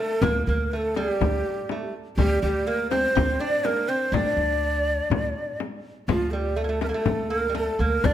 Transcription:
0.00 A3 A4
0.22 D2 A#3 A#4, frame drum
0.46 D2 A#3 A#4
0.72 A3 A#4
0.76 A4
0.95 G3 G4, frame drum
1.21 D2, frame drum
1.69 A3, frame drum
2.17 D2 G3 G4, frame drum
2.42 D2 G3 G4
2.67 A#3 A#4
2.90 C4 C5, frame drum
3.15 D2 C4, frame drum
3.40 D4 D5
3.65 A#3 A#4, frame drum
3.89 C4 C5
4.12 D2 D4 D5, frame drum
4.37 D2
5.10 D2, frame drum
5.60 frame drum
6.08 D2 F3 F4, frame drum
6.31 G3 A4
6.35 G4
6.56 A3 A4
6.64 A#3
6.69 A3
6.81 A3 A#4, frame drum
6.87 A#3 A4
6.94 A3
7.06 D2, frame drum
7.30 A#3 A#4
7.49 G3
7.55 A3 A4, frame drum
7.79 D2 A#3 A#4
8.04 D2 D4 D5, frame drum

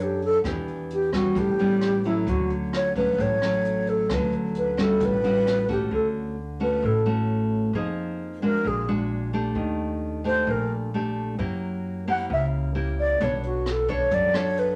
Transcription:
Already playing: F#2 F#3 D4 A4 C#5
0.02 G4
0.22 A4, closed hi-hat
0.44 E2 E3 B3 D4 G4, kick, cross-stick, closed hi-hat
0.68 closed hi-hat
0.90 G4, closed hi-hat
1.12 G3 B3 C#4 F#4, kick, cross-stick, closed hi-hat
1.35 A1 A2 G4, kick, closed hi-hat
1.59 G3 B3 C#4, closed hi-hat
1.81 cross-stick, closed hi-hat
2.04 F#3 A3 C#4 E4, closed hi-hat
2.27 D2 D3 F#4, kick, closed hi-hat
2.50 closed hi-hat
2.73 C#5, cross-stick, closed hi-hat
2.96 F#3 A3 C#4 B4, kick, closed hi-hat
3.18 A1 A2 C#5, kick, closed hi-hat
3.42 F#3 A3 C#4, cross-stick, closed hi-hat
3.65 closed hi-hat
3.87 A4, closed hi-hat
4.10 D2 D3 F#3 A3 C#4 B4, kick, cross-stick, closed hi-hat
4.32 closed hi-hat
4.55 B4, closed hi-hat
4.77 G3 C#4 F#4 A4, cross-stick, closed hi-hat
4.99 A1 A2, kick, closed hi-hat
5.05 B4
5.24 G3 C#4 F#4, closed hi-hat
5.47 cross-stick, closed hi-hat
5.68 A3 C#4 F#4 G4, kick, closed hi-hat
5.91 D2 D3 A4
6.60 A3 C#4 F#4 B4
6.82 A1 A2 A4
7.06 A3 C#4 F#4
7.73 F2 F3 A#3 D#4 G#4
8.42 G#3 D4 F#4 A#4
8.64 A#1 A#2 G#4
8.88 G#3 D4 F#4
9.33 A3 D4 G4
9.55 D#2 D#3
10.24 A3 D4 G4 C5
10.47 A#1 A#2 A#4
10.94 A3 D4 G4
11.39 F#2 F#3 A#3 E4 G4
12.08 A#3 E4 G4 F#5
12.30 C#2 C#3 E5
12.75 A#3 E4 G4
13.00 D5
13.20 B1 B3 D4 A4 C#5, kick, closed hi-hat
13.43 F#4, closed hi-hat
13.66 cross-stick, closed hi-hat
13.70 A4
13.88 D4 A4 C#5, kick, closed hi-hat
14.11 F#2 F#3 D5, kick, closed hi-hat
14.34 D4 A4 C#5, cross-stick, closed hi-hat
14.57 B4, closed hi-hat

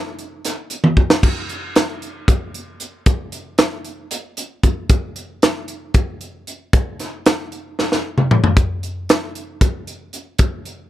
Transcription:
0.19 closed hi-hat
0.45 snare, closed hi-hat
0.70 closed hi-hat
0.84 high tom
0.97 kick
1.10 snare
1.23 kick, crash
1.49 closed hi-hat
1.76 snare, closed hi-hat
2.02 closed hi-hat
2.28 kick, closed hi-hat
2.54 closed hi-hat
2.80 closed hi-hat
3.06 kick, closed hi-hat
3.32 closed hi-hat
3.58 snare, closed hi-hat
3.85 closed hi-hat
4.11 closed hi-hat
4.37 closed hi-hat
4.63 kick, closed hi-hat
4.89 kick, closed hi-hat
5.16 closed hi-hat
5.42 snare, closed hi-hat
5.68 closed hi-hat
5.94 kick, closed hi-hat
6.21 closed hi-hat
6.47 closed hi-hat
6.73 kick, closed hi-hat
7.00 snare, closed hi-hat
7.26 snare, closed hi-hat
7.52 closed hi-hat
7.79 snare
7.92 snare
8.18 mid tom
8.31 mid tom
8.44 floor tom
8.57 kick, closed hi-hat
8.83 closed hi-hat
9.09 snare, closed hi-hat
9.35 closed hi-hat
9.61 kick, closed hi-hat
9.87 closed hi-hat
10.13 closed hi-hat
10.39 kick, closed hi-hat
10.65 closed hi-hat

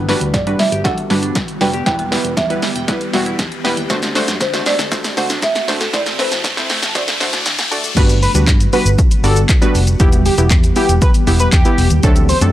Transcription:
Already playing: G1 D3 G3 B3 F#4, riser
0.09 G3 D4 F#4 B4, snare, open hi-hat
0.21 D2, closed hi-hat
0.34 G2 G3 D5, kick, snare, closed hi-hat
0.47 G3 D4 F#4 B4, closed hi-hat
0.59 G3 E5, snare, open hi-hat
0.72 G1 G4, closed hi-hat
0.84 G3 D4 F#4 A4 F#5, kick, snare, closed hi-hat
0.98 closed hi-hat
1.10 G1 G3 D4 F#4 B4, snare, open hi-hat
1.23 D4, closed hi-hat
1.35 kick, snare, closed hi-hat
1.48 closed hi-hat
1.61 F1 G3 D4 F#4 B4 G5, snare, open hi-hat
1.74 G4, closed hi-hat
1.86 E1 E3 G3 B3 E4 G4 B4 G5, kick, snare, closed hi-hat
1.99 B3, closed hi-hat
2.12 G3 B3 E4 B4, snare, open hi-hat
2.25 E1, closed hi-hat
2.37 E2 G3 E5, kick, snare, closed hi-hat
2.50 G3 B3 E4 B4, closed hi-hat
2.62 G3, snare, open hi-hat
2.75 E1 G5, closed hi-hat
2.88 G3 B3 E4 B4, kick, snare, closed hi-hat
3.01 closed hi-hat
3.13 E1 G3 B3 E4 F#4, snare, open hi-hat
3.26 E4, closed hi-hat
3.39 E2, kick, snare, closed hi-hat
3.52 closed hi-hat
3.64 E1 G3 B3 E4 B4, snare, open hi-hat
3.77 D#2 G5, closed hi-hat
3.90 D2 D3 A3 C4 D4 F#4 C5, kick, snare, closed hi-hat, shaker
4.02 C4, snare, closed hi-hat, shaker
4.15 A3 D4 F#4 C5, snare, open hi-hat, shaker
4.28 F#2, snare, closed hi-hat, shaker
4.41 D3 A3 C5, kick, snare, closed hi-hat, shaker
4.53 A3 D4 F#4 C5, snare, closed hi-hat, shaker
4.66 A3 D5, snare, open hi-hat, shaker
4.79 D2 A4, snare, closed hi-hat, shaker
4.91 A3 D4 F#4 C5, kick, snare, closed hi-hat, shaker
5.04 snare, closed hi-hat, shaker
5.17 D2 A3 D4 F#4 C5 F#5, snare, open hi-hat, shaker
5.30 D4, snare, closed hi-hat, shaker
5.42 E5, kick, snare, closed hi-hat, shaker
5.55 snare, closed hi-hat, shaker
5.68 A#1 A3 D4 F#4 C5, snare, open hi-hat, shaker
5.81 A4, snare, closed hi-hat, shaker
5.93 A1 C3 A3 C4 E4 C5 D5, kick, snare, closed hi-hat, shaker
6.06 C4, snare, closed hi-hat, shaker
6.19 A3 C4 E4 B4 C5, snare, open hi-hat, shaker
6.31 A1, snare, closed hi-hat, shaker
6.44 A2 A3, kick, snare, closed hi-hat, shaker
6.57 A3 C4 E4 C5, snare, closed hi-hat, shaker
6.70 A3, snare, open hi-hat, shaker
6.82 A1 A5, snare, closed hi-hat, shaker
6.95 D2 A3 D4 F#4 C5 D5, kick, snare, closed hi-hat, shaker
7.08 snare, closed hi-hat, shaker
7.20 D2 A3 D4 F#4 C5, snare, open hi-hat, shaker
7.33 D4, snare, closed hi-hat, shaker
7.46 D3, snare, closed hi-hat, shaker
7.59 snare, closed hi-hat, shaker
7.71 D2 A3 D4 F#4 D5, open hi-hat, shaker
7.84 G#1 A4, closed hi-hat, shaker
7.97 G1 D3 G3 B3 D4 F#4 B4, kick, closed hi-hat, crash, shaker
8.09 closed hi-hat, shaker
8.22 B4, open hi-hat, shaker
8.35 D2 G3 B3 D4 F#4 B4, closed hi-hat, shaker
8.47 G2, kick, clap, closed hi-hat, shaker
8.60 closed hi-hat, shaker
8.73 G3 B3 D4 F#4 B4, open hi-hat, shaker
8.85 G1, closed hi-hat, shaker
8.99 kick, closed hi-hat, shaker
9.11 closed hi-hat, shaker
9.24 G1 G3 B3 D4 F#4 A4 D5, open hi-hat, shaker
9.36 closed hi-hat, shaker
9.49 kick, clap, closed hi-hat, shaker
9.62 G3 B3 D4 F#4 B4, closed hi-hat, shaker
9.75 F1, open hi-hat, shaker
9.87 closed hi-hat, shaker
10.00 E1 E3 B3 E4 G4, kick, closed hi-hat, shaker
10.12 closed hi-hat, shaker
10.26 G4, open hi-hat, shaker
10.38 E1 B3 E4 G4, closed hi-hat, shaker
10.51 E2, kick, clap, closed hi-hat, shaker
10.64 closed hi-hat, shaker
10.76 B3 E4 G4, open hi-hat, shaker
10.89 E1, closed hi-hat, shaker
11.02 B4, kick, closed hi-hat, shaker
11.14 closed hi-hat, shaker
11.27 E1 B3 E4 G4, open hi-hat, shaker
11.40 B4, closed hi-hat, shaker
11.52 E2 G4, kick, clap, closed hi-hat, shaker
11.65 B3 E4 G4, closed hi-hat, shaker
11.78 E1, open hi-hat, shaker
11.90 D#2, closed hi-hat, shaker
12.03 D2 D3 F#3 A3 C4 D4 F#4 A4, kick, closed hi-hat, shaker
12.16 closed hi-hat, shaker
12.29 C5, open hi-hat, shaker
12.41 F#2 F#3 A3 C4 D4 A4, closed hi-hat, shaker

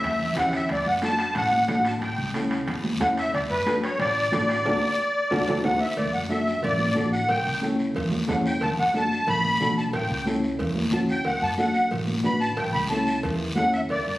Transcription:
Already playing: E5
0.02 E2, high conga, high timbale, long guiro
0.19 low conga
0.35 E2 C#4 E4 G4 F#5, low conga, high timbale, short guiro
0.52 E5, low conga, high timbale, short guiro
0.69 D2 D5, high timbale, long guiro
0.86 F#2 F#5
1.02 D4 F#4 A4 A5, high conga, high timbale, short guiro
1.19 high timbale, short guiro
1.35 A1 F#5, high timbale, long guiro
1.51 high conga
1.68 A1 D4 F#4 A4, high conga, high timbale, short guiro
1.85 A5, high timbale, short guiro
2.01 A1 G5, high timbale, long guiro
2.18 C#2
2.34 C#4 E4 A4, high conga, high timbale, short guiro
2.51 high timbale, short guiro
2.67 E2, high timbale, long guiro
2.83 high conga
3.00 E2 C#4 E4 A4 F#5, high conga, high timbale, short guiro
3.17 E5, high timbale, short guiro
3.34 D2 D5, high timbale, long guiro
3.50 F#2 B4
3.66 D4 F#4 A4, high conga, high timbale, short guiro
3.83 C#5, high timbale, short guiro
3.99 A1 D5, high timbale, long guiro
4.32 A1 D4 F#4 A4, high conga, high timbale, short guiro
4.49 high timbale, short guiro
4.65 D2 D4 F#4 A4, high conga, high timbale, long guiro
5.31 D2 D4 F#4 A4, high conga, high timbale, long guiro
5.47 D2 D4 F#4 A4, high conga, high timbale, long guiro
5.63 D2 D4 F#4 A4 F#5, high conga, high timbale, long guiro
5.80 E5
5.97 D2 D5, cowbell, low conga, long guiro
6.14 F#2 F#5
6.29 D4 F#4 A4 E5, high conga, short guiro
6.47 short guiro
6.62 A1 D5, cowbell, low conga, long guiro
6.78 high conga
6.95 A1 D4 F#4 A4, high conga, low conga, short guiro
7.12 F#5, short guiro
7.28 A1 G5, cowbell, low conga, long guiro
7.47 C#2
7.61 C#4 E4 A4, high conga, short guiro
7.79 short guiro
7.95 E2, cowbell, low conga, long guiro
8.11 high conga
8.28 E2 C#4 E4 A4 F#5, high conga, low conga, low timbale, short guiro
8.46 G5, short guiro
8.61 D2 A5, cowbell, low conga, long guiro
8.79 F#2 F#5
8.94 D4 F#4 A4 A5, high conga, short guiro
9.12 short guiro
9.27 A1 B5, cowbell, low conga, long guiro
9.44 high conga
9.60 B1 D4 F#4 A4, high conga, low conga, short guiro
9.78 A5, short guiro
9.93 A1 G5, cowbell, long guiro
10.10 C#2
10.26 C#4 E4 A4, high conga, short guiro
10.43 short guiro
10.59 E2, cowbell, low conga, long guiro
10.75 high conga
10.92 E2 C#4 E4 F#4 A5, high conga, low conga, short guiro
11.09 G5, short guiro
11.25 D2 F#5, cowbell, long guiro
11.42 F#2 A5
11.58 D4 F#4 A4 F#5, high conga, short guiro
11.74 short guiro
11.91 A1, cowbell, low conga, long guiro
12.07 high conga
12.23 A1 D4 F#4 B4 B5, high conga, short guiro
12.41 A5, short guiro
12.54 G5 A5, cowbell, low conga, long guiro
12.58 A1
12.73 C#2 B5
12.90 C#4 E4 A4 A5, high conga, short guiro
13.07 short guiro
13.23 E2, cowbell, low conga, long guiro
13.56 E2 C#4 E4 A4 F#5, high conga, short guiro
13.73 E5, short guiro
13.89 D2 D5, cowbell, long guiro
14.07 F#2 D5

